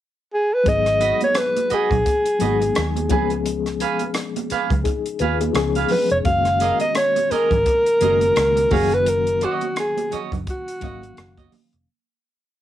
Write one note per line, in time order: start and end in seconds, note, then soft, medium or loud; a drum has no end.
0.34 0.55 G#4 medium
0.54 0.70 B4 medium
0.64 1.11 G#1 medium
0.64 1.80 F#3 medium
0.64 1.80 G#3 medium
0.64 1.81 B3 medium
0.64 1.81 D#4 medium
0.64 1.82 G#4 medium
0.64 kick loud
0.64 closed hi-hat medium
0.68 1.22 D#5 loud
0.86 cross-stick soft
0.86 closed hi-hat soft
1.01 1.21 F#4 medium
1.01 1.22 B4 medium
1.01 1.22 D#5 medium
1.01 closed hi-hat medium
1.01 muted conga soft
1.21 1.39 C#5 medium
1.21 closed hi-hat soft
1.21 high conga medium
1.35 1.76 B4 medium
1.35 cross-stick loud
1.35 closed hi-hat medium
1.56 muted clean electric guitar stroke soft
1.56 closed hi-hat soft
1.56 high conga medium
1.70 1.91 F#4 medium
1.70 1.90 B4 medium
1.70 1.90 D#5 medium
1.70 muted fingered electric bass stroke soft
1.70 closed hi-hat soft
1.70 muted conga soft
1.74 3.12 G#4 medium
1.91 2.03 A#1 medium
1.91 muted clean electric guitar stroke soft
1.91 kick medium
1.91 closed hi-hat soft
1.91 low conga medium
2.06 muted clean electric guitar stroke soft
2.06 kick medium
2.06 closed hi-hat medium
2.06 muted conga soft
2.26 closed hi-hat medium
2.39 2.69 G#1 medium
2.39 3.10 F#3 medium
2.39 3.09 G#3 medium
2.39 3.10 B3 soft
2.39 3.11 D#4 medium
2.39 2.57 F#4 medium
2.39 3.12 G#4 medium
2.39 2.57 B4 medium
2.39 2.57 D#5 medium
2.39 closed hi-hat medium
2.39 high conga medium
2.60 muted clean electric guitar stroke soft
2.60 closed hi-hat soft
2.60 high conga medium
2.75 3.11 D#2 medium
2.75 cross-stick loud
2.75 closed hi-hat medium
2.75 muted conga soft
2.96 muted clean electric guitar stroke soft
2.96 closed hi-hat soft
2.96 high conga medium
3.09 3.83 C#2 medium
3.09 4.25 F3 medium
3.09 4.26 G#3 medium
3.09 4.26 B3 medium
3.09 4.26 C#4 medium
3.09 3.31 G#4 medium
3.09 4.27 G#4 loud
3.09 3.31 B4 medium
3.09 3.31 G#5 medium
3.09 kick medium
3.09 closed hi-hat medium
3.09 high conga medium
3.09 low conga medium
3.30 muted clean electric guitar stroke soft
3.30 closed hi-hat soft
3.46 closed hi-hat medium
3.66 cross-stick soft
3.66 closed hi-hat soft
3.80 4.01 G#4 medium
3.80 4.02 B4 medium
3.80 4.02 F5 medium
3.80 closed hi-hat medium
3.80 muted conga soft
3.99 closed hi-hat soft
3.99 high conga medium
4.14 cross-stick medium
4.14 closed hi-hat medium
4.36 muted clean electric guitar stroke soft
4.36 closed hi-hat soft
4.36 high conga medium
4.50 4.72 G#4 medium
4.50 4.71 B4 medium
4.50 4.70 F5 medium
4.50 muted fingered electric bass stroke soft
4.50 closed hi-hat medium
4.70 4.83 C#2 medium
4.70 muted clean electric guitar stroke soft
4.70 kick medium
4.70 closed hi-hat soft
4.70 low conga medium
4.84 5.18 D#4 soft
4.84 5.18 G#4 medium
4.84 muted clean electric guitar stroke soft
4.84 kick medium
4.84 closed hi-hat medium
4.84 muted conga soft
5.06 closed hi-hat soft
5.19 5.49 D#2 medium
5.19 5.40 F4 soft
5.19 5.37 G#4 medium
5.19 5.40 B4 medium
5.19 5.37 B4 medium
5.19 5.38 F5 medium
5.19 closed hi-hat medium
5.19 high conga medium
5.41 5.74 D#4 soft
5.41 5.55 G#4 medium
5.41 muted clean electric guitar stroke soft
5.41 closed hi-hat soft
5.41 high conga medium
5.53 5.83 C#2 medium
5.53 6.13 F3 medium
5.53 6.14 G#3 medium
5.53 6.14 B3 medium
5.53 6.14 C#4 medium
5.53 6.15 G#4 medium
5.53 muted clean electric guitar stroke soft
5.53 cross-stick loud
5.53 closed hi-hat medium
5.53 muted conga soft
5.75 5.90 G#4 soft
5.75 5.90 B4 medium
5.75 5.91 F5 medium
5.75 closed hi-hat medium
5.75 high conga medium
5.89 6.10 B4 medium
5.89 open hi-hat medium
5.89 muted conga soft
5.89 high conga medium
5.89 low conga medium
6.10 6.23 F1 medium
6.10 6.18 C#5 medium
6.10 muted clean electric guitar stroke soft
6.10 closed hi-hat soft
6.24 6.70 F#1 medium
6.24 7.40 D#3 medium
6.24 7.41 G#3 medium
6.24 7.41 A#3 medium
6.24 7.42 C#4 medium
6.24 7.42 F#4 medium
6.24 6.77 F5 medium
6.24 kick loud
6.24 closed hi-hat medium
6.45 cross-stick soft
6.45 closed hi-hat soft
6.60 6.82 G#4 medium
6.60 6.82 A#4 medium
6.60 6.82 D#5 medium
6.60 closed hi-hat medium
6.60 muted conga soft
6.80 6.95 D#5 medium
6.80 closed hi-hat soft
6.80 high conga medium
6.95 7.33 C#5 medium
6.95 cross-stick medium
6.95 closed hi-hat medium
6.95 muted conga soft
7.16 muted clean electric guitar stroke soft
7.16 closed hi-hat soft
7.16 high conga medium
7.31 7.52 G#4 medium
7.31 8.74 A#4 medium
7.31 7.51 A#4 medium
7.31 7.51 D#5 medium
7.31 muted fingered electric bass stroke soft
7.31 closed hi-hat soft
7.31 muted conga soft
7.51 7.63 G#1 medium
7.51 muted clean electric guitar stroke soft
7.51 kick medium
7.51 closed hi-hat soft
7.51 low conga medium
7.66 muted clean electric guitar stroke soft
7.66 kick medium
7.66 closed hi-hat medium
7.66 muted conga soft
7.86 closed hi-hat soft
8.01 8.30 F#1 medium
8.01 8.69 D#3 medium
8.01 8.72 G#3 medium
8.01 8.71 A#3 medium
8.01 8.72 C#4 medium
8.01 8.73 F#4 medium
8.01 8.17 G#4 medium
8.01 8.18 A#4 medium
8.01 8.18 D#5 medium
8.01 closed hi-hat medium
8.01 muted conga soft
8.01 high conga medium
8.21 muted clean electric guitar stroke soft
8.21 closed hi-hat soft
8.21 high conga medium
8.36 8.65 C#2 medium
8.36 cross-stick loud
8.36 closed hi-hat medium
8.36 muted conga soft
8.56 muted clean electric guitar stroke soft
8.56 closed hi-hat soft
8.56 high conga medium
8.70 9.44 F#1 medium
8.70 9.86 D#3 medium
8.70 9.87 F#3 medium
8.70 9.87 A#3 medium
8.70 9.88 C#4 medium
8.70 8.92 F#4 medium
8.70 9.88 F#4 medium
8.70 8.96 G#4 medium
8.70 8.92 C#5 medium
8.70 8.92 F5 medium
8.70 kick loud
8.70 open hi-hat medium
8.70 high conga medium
8.70 low conga medium
8.92 9.10 B4 medium
8.92 muted clean electric guitar stroke soft
8.92 closed hi-hat soft
9.06 9.46 A#4 medium
9.06 closed hi-hat medium
9.06 muted conga soft
9.27 closed hi-hat soft
9.41 9.64 F#4 medium
9.41 9.78 F#4 medium
9.41 9.65 C#5 medium
9.41 9.65 D#5 medium
9.41 closed hi-hat medium
9.61 closed hi-hat soft
9.61 high conga medium
9.76 10.19 G#4 medium
9.76 cross-stick loud
9.76 closed hi-hat medium
9.97 muted clean electric guitar stroke soft
9.97 closed hi-hat soft
9.97 high conga medium
10.11 10.33 F#4 medium
10.11 10.32 C#5 medium
10.11 10.31 D#5 medium
10.11 muted fingered electric bass stroke soft
10.11 closed hi-hat medium
10.11 low conga medium
10.32 10.44 F#1 medium
10.32 muted clean electric guitar stroke soft
10.32 kick medium
10.32 closed hi-hat soft
10.32 low conga medium
10.47 11.50 F#4 medium
10.47 muted clean electric guitar stroke soft
10.47 kick medium
10.47 closed hi-hat medium
10.68 closed hi-hat medium
10.81 11.11 G#1 medium
10.81 11.70 D#3 medium
10.81 11.70 F#3 medium
10.81 11.70 A#3 medium
10.81 11.71 C#4 medium
10.81 10.99 F#4 soft
10.81 10.99 C#5 medium
10.81 10.99 D#5 soft
10.81 11.71 F5 medium
10.81 kick medium
10.81 closed hi-hat medium
10.81 muted conga soft
10.81 high conga medium
11.02 muted clean electric guitar stroke soft
11.02 closed hi-hat soft
11.02 high conga medium
11.17 11.46 F#1 medium
11.17 muted clean electric guitar stroke soft
11.17 cross-stick loud
11.17 closed hi-hat medium
11.37 11.51 F#4 soft
11.37 11.52 C#5 medium
11.37 11.53 D#5 medium
11.37 kick medium
11.37 closed hi-hat medium
11.37 high conga medium
11.52 muted clean electric guitar stroke soft
11.52 open hi-hat medium
11.52 muted conga soft
11.52 high conga medium
11.52 low conga medium
11.73 11.85 F1 medium
11.73 muted clean electric guitar stroke soft
11.73 closed hi-hat soft